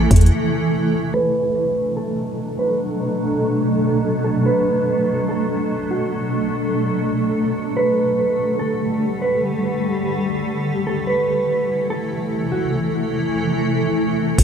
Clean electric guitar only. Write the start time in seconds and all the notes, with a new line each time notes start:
1.14 B4
1.97 A4
2.59 B4
4.24 A4
4.46 B4
5.29 A4
5.91 F#4
7.77 B4
8.59 A4
9.22 B4
10.87 A4
11.07 B4
11.90 A4
12.52 F#4